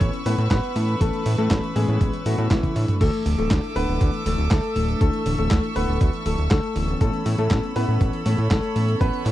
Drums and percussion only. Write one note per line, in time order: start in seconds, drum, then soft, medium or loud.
0.01 kick loud
0.01 closed hi-hat medium
0.13 closed hi-hat soft
0.26 snare soft
0.26 open hi-hat loud
0.38 closed hi-hat soft
0.51 kick loud
0.51 snare loud
0.51 clap medium
0.51 closed hi-hat loud
0.63 closed hi-hat soft
0.76 open hi-hat loud
0.88 closed hi-hat soft
1.01 kick loud
1.01 closed hi-hat loud
1.13 closed hi-hat soft
1.26 open hi-hat loud
1.38 closed hi-hat soft
1.51 kick loud
1.51 snare loud
1.51 clap loud
1.51 closed hi-hat loud
1.63 closed hi-hat soft
1.76 open hi-hat loud
1.88 closed hi-hat soft
2.01 kick loud
2.01 closed hi-hat loud
2.13 closed hi-hat soft
2.26 open hi-hat loud
2.38 closed hi-hat soft
2.51 kick loud
2.51 snare loud
2.51 clap medium
2.51 closed hi-hat loud
2.51 high tom medium
2.63 kick medium
2.63 closed hi-hat soft
2.63 high tom medium
2.76 open hi-hat medium
2.88 closed hi-hat soft
2.88 mid tom medium
3.01 kick loud
3.01 closed hi-hat loud
3.01 crash medium
3.13 closed hi-hat soft
3.26 open hi-hat loud
3.38 closed hi-hat soft
3.51 kick loud
3.51 snare loud
3.51 clap medium
3.51 closed hi-hat loud
3.63 closed hi-hat soft
3.76 open hi-hat medium
4.01 kick loud
4.01 closed hi-hat loud
4.13 closed hi-hat soft
4.26 snare soft
4.26 open hi-hat loud
4.38 closed hi-hat soft
4.51 kick loud
4.51 snare loud
4.51 clap medium
4.51 closed hi-hat loud
4.63 closed hi-hat soft
4.76 open hi-hat medium
4.88 closed hi-hat soft
5.01 kick loud
5.01 closed hi-hat loud
5.13 closed hi-hat soft
5.26 open hi-hat loud
5.38 closed hi-hat soft
5.51 kick loud
5.51 snare loud
5.51 clap loud
5.51 closed hi-hat loud
5.63 closed hi-hat soft
5.76 open hi-hat medium
6.01 kick loud
6.01 closed hi-hat medium
6.13 closed hi-hat soft
6.26 open hi-hat loud
6.38 closed hi-hat soft
6.51 kick loud
6.51 snare loud
6.51 clap loud
6.51 closed hi-hat medium
6.63 closed hi-hat soft
6.76 open hi-hat medium
6.88 closed hi-hat soft
7.01 kick loud
7.01 closed hi-hat medium
7.13 closed hi-hat soft
7.26 open hi-hat loud
7.38 closed hi-hat soft
7.51 kick loud
7.51 snare loud
7.51 clap medium
7.51 closed hi-hat medium
7.63 closed hi-hat soft
7.76 open hi-hat medium
8.01 kick loud
8.01 closed hi-hat medium
8.13 closed hi-hat soft
8.26 snare soft
8.26 open hi-hat loud
8.38 closed hi-hat soft
8.51 kick loud
8.51 snare loud
8.51 clap loud
8.51 closed hi-hat loud
8.63 closed hi-hat soft
8.76 open hi-hat medium
8.88 closed hi-hat soft
9.01 kick loud
9.01 closed hi-hat medium
9.13 closed hi-hat soft
9.26 clap soft
9.26 open hi-hat loud